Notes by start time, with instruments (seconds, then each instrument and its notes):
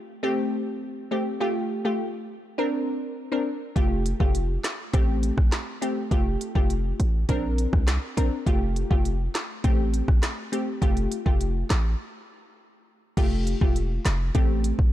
0.23 synth pluck A3 C4 G4
1.11 synth pluck A3 C4 G4
1.40 synth pluck A3 F4 G4
1.85 synth pluck A3 F4 G4
2.58 synth pluck C4 D4 A#4
3.32 synth pluck C4 D4 A#4
3.76 808-style bass F1, synth pluck A3 F4 G4, kick, closed hi-hat
4.06 closed hi-hat
4.20 808-style bass F1, synth pluck A3 F4 G4, kick
4.35 closed hi-hat
4.64 snare, clap, closed hi-hat
4.93 808-style bass A1, synth pluck A3 C4 G4, kick, closed hi-hat
5.23 closed hi-hat
5.38 808-style bass A1, kick, cross-stick
5.52 snare, clap, closed hi-hat
5.82 synth pluck A3 C4 G4, closed hi-hat
6.11 808-style bass F1, synth pluck A3 F4 G4, kick, closed hi-hat
6.41 closed hi-hat
6.55 808-style bass F1, synth pluck A3 F4 G4, kick
6.70 closed hi-hat
7.00 808-style bass A1, closed hi-hat
7.29 808-style bass A#1, synth pluck C4 D4 A#4, kick, closed hi-hat
7.58 closed hi-hat
7.73 808-style bass C2, kick, cross-stick
7.88 snare, clap, closed hi-hat
8.17 808-style bass A#1, synth pluck C4 D4 A#4, closed hi-hat
8.46 808-style bass F1, synth pluck A3 F4 G4, kick, closed hi-hat
8.76 closed hi-hat
8.90 808-style bass F1, synth pluck A3 F4 G4, kick
9.05 closed hi-hat
9.35 snare, clap, closed hi-hat
9.64 808-style bass A1, synth pluck A3 C4 G4, kick, closed hi-hat
9.94 closed hi-hat
10.08 808-style bass A1, kick, cross-stick
10.23 snare, clap, closed hi-hat
10.52 synth pluck A3 C4 G4, closed hi-hat
10.82 808-style bass F1, synth pluck A3 F4 G4, kick, closed hi-hat
10.97 closed hi-hat
11.12 closed hi-hat
11.26 808-style bass F1, synth pluck A3 F4 G4, kick
11.41 closed hi-hat
11.70 808-style bass A1, snare, clap, closed hi-hat
13.17 808-style bass F1, synth pluck A3 F4 G4, kick, closed hi-hat, crash
13.47 closed hi-hat
13.61 808-style bass E1, synth pluck A3 F4 G4, kick
13.76 closed hi-hat
14.05 808-style bass F1, snare, clap, closed hi-hat
14.35 808-style bass A1, synth pluck A3 C4 G4, kick, closed hi-hat
14.64 closed hi-hat
14.79 808-style bass A1, kick